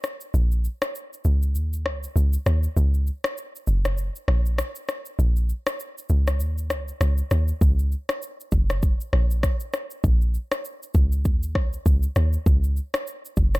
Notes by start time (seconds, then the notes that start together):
0.04 cross-stick, shaker
0.21 shaker
0.34 A#1, shaker
0.52 shaker
0.64 shaker
0.82 cross-stick, shaker
0.95 shaker
1.13 shaker
1.25 C#2, shaker
1.42 shaker
1.55 D#2, shaker
1.73 shaker
1.86 C#2, cross-stick
2.03 shaker
2.16 C#2, shaker
2.33 shaker
2.46 D#2, cross-stick, shaker
2.63 shaker
2.77 C#2, shaker
2.94 shaker
3.07 shaker
3.24 cross-stick, shaker
3.38 shaker
3.56 shaker
3.67 F#1, shaker
3.85 cross-stick, shaker
3.98 shaker
4.16 shaker
4.28 A#1, cross-stick
4.46 shaker
4.58 cross-stick, shaker
4.75 shaker
4.88 cross-stick, shaker
5.06 shaker
5.19 A#1, shaker
5.36 shaker
5.49 shaker
5.67 cross-stick, shaker
5.80 shaker
5.98 shaker
6.09 C#2, shaker
6.27 cross-stick, shaker
6.40 D#2, shaker
6.58 shaker
6.70 C#2, cross-stick, shaker
6.88 shaker
7.01 C#2, cross-stick, shaker
7.18 shaker
7.31 D#2, cross-stick, shaker
7.48 shaker
7.61 C#2, kick, shaker
7.79 shaker
7.92 shaker
8.09 cross-stick, shaker
8.22 shaker
8.40 shaker
8.52 F#1, kick, shaker
8.70 cross-stick, shaker
8.82 kick, shaker
9.01 shaker
9.13 A#1, cross-stick
9.31 shaker
9.43 kick, cross-stick, shaker
9.60 shaker
9.73 cross-stick, shaker
9.91 shaker
10.04 A#1, kick, shaker
10.21 shaker
10.34 shaker
10.52 cross-stick, shaker
10.65 shaker
10.83 shaker
10.94 C#2, kick, shaker
11.12 shaker
11.25 D#2, kick, shaker
11.43 shaker
11.55 C#2, kick, cross-stick
11.73 shaker
11.86 C#2, kick, shaker
12.03 shaker
12.16 D#2, cross-stick, shaker
12.33 shaker
12.46 C#2, kick, shaker
12.64 shaker
12.77 shaker
12.94 cross-stick, shaker
13.07 shaker
13.25 shaker
13.37 F#1, kick, shaker
13.54 cross-stick, shaker